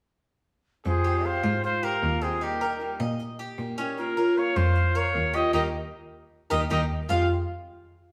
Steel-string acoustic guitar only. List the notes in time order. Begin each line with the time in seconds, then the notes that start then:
0.84 C3 F3 G#3 C4 G4
1.05 F3 G#3 C4 G4
1.24 F3 G#3 C4 G4
1.64 muted steel-string acoustic guitar stroke
2.03 F3 G#3 C4 G4
2.21 F3 G#3 C4 G4
2.41 D#3 G3 A#3 D#4 G4
2.61 G3 A#3 D#4 G4
2.80 G3 A#3 D#4 G4
3.19 muted steel-string acoustic guitar stroke
3.58 G3 A#3 D#4 G4
3.78 G3 A#3 D#4 G4
3.97 F3 A#3 C#4 F4
4.17 A#3 C#4 F4
4.36 F3 A#3 C#4 F4
4.75 muted steel-string acoustic guitar stroke
5.15 F3 A#3 C#4 F4
5.35 A#3 C#4 F4
5.54 G3 A#3 D#4
6.51 G3 A#3 D#4
6.70 G3 A#3 D#4
7.08 F2 C3 F3 G#3 C4 G4